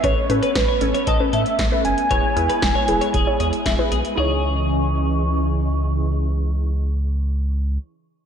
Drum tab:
HH |x-xxx-xxx-xxx-xx|x-xxx-xxx-xxx-xx|----------------|----------------|
SD |----o-------o---|----o-------o---|----------------|----------------|
BD |o---o---o---o---|o---o---o---o---|----------------|----------------|